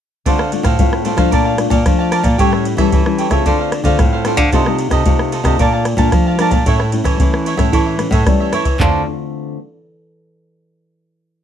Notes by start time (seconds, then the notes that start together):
0.26 D3 A3 C4 D4 F4 A4 C5 F5, kick, ride
0.39 A4 C5 F5, cross-stick
0.52 A3 C4 F4, muted cavaquinho stroke, ride
0.63 A2 A4 C5 F5, kick, cross-stick, ride
0.79 A2 A3 C4 F4, kick, ride
0.93 cross-stick
1.04 A3 C4 D4 F4 A4 C5 F5, ride
1.17 F3 A3 D4 F4 A4 C5 F5, kick, cross-stick, ride
1.31 A#2 A#4 D5 F5 A5, kick, ride
1.45 D5 F5 A5
1.58 A3 D4 F4, muted cavaquinho stroke, cross-stick, ride
1.70 A#2 D5 F5 A5, kick, ride
1.86 F3 A3 D4 F4, kick, cross-stick, ride
1.99 D5 F5 A5
2.11 A#4 D5 F5 A5, cross-stick, ride
2.23 A#2 D5 F5 A5, kick, ride
2.38 A2 G3 C#4 E4 G4 A4 C#5 E5, kick, ride
2.53 A4 C#5 E5, cross-stick
2.65 muted cavaquinho stroke, ride
2.77 E3 G3 C#4 E4 A4 C#5 E5, kick, cross-stick, ride
2.92 E3, kick, ride
3.05 G3 C#4 E4, cross-stick
3.18 G4 A4 C#5 E5, ride
3.30 C#3 A3 C4 F4 A4 C#5 E5, kick, cross-stick, ride
3.46 D3 D4 A4 C5 F5, kick, ride
3.60 A4 C5 F5
3.72 muted cavaquinho stroke, cross-stick, ride
3.84 D3 A3 C4 F4 A4 C5 F5, kick, ride
3.99 A2, kick, cross-stick, ride
4.12 A4 C5 F5
4.25 A3 C4 D4 F4 A4 C5 F5, cross-stick, ride
4.37 D3 A4 C5 F5, kick, ride
4.52 C3 A3 D#4 F4 A4 C5 D#5, kick, ride
4.66 A3 D#4 F4 A4 C5 D#5, cross-stick
4.79 muted cavaquinho stroke, ride
4.90 C3 A4 C5 D#5, kick, cross-stick, ride
5.06 C3 A3 D#4 F4, kick, ride
5.19 cross-stick
5.32 F4 A4 C5 D#5, ride
5.44 C3 A3 D4 F4 A4 C5 D#5, kick, cross-stick, ride
5.59 A#2 A#4 D5 F5 A5, kick, ride
5.73 D5 F5 A5
5.85 muted cavaquinho stroke, cross-stick, ride
5.97 A#2 A3 D4 F4 D5 F5 A5, kick, ride
6.12 F3, kick, cross-stick, ride
6.27 D5 F5 A5
6.39 A3 D4 F4 A#4 D5 F5 A5, cross-stick, ride
6.51 A#2 D5 F5 A5, kick, ride
6.66 A2 A3 C#4 E4 A4 C#5 E5, kick, ride
6.79 A4 C#5 E5, cross-stick
6.92 A3 C#4 E4, muted cavaquinho stroke, ride
7.04 E3 A4 C#5 E5, kick, cross-stick, ride
7.19 E3 A3 C#4 E4, kick, ride
7.34 cross-stick
7.45 E4 A4 C#5 E5, ride
7.57 A2 A3 C#4 E4 A4 C#5 E5, kick, cross-stick, ride
7.72 A2 E3 E4 A4 C#5 E5, kick, ride
7.87 A4 C#5 E5
7.99 A3 C#4 E4, muted cavaquinho stroke, cross-stick, ride
8.11 A2 A4 C#5 E5, kick, ride
8.26 E3 G3 A3 C#4 E4, kick, cross-stick, ride
8.40 A4 C#5 E5
8.52 E3 E4 A4 C#5 E5, cross-stick, ride
8.65 A4 C#5 E5, kick, ride
8.79 D3 A3 C4 D4 F4 A4 C5 F5, kick, clap, floor tom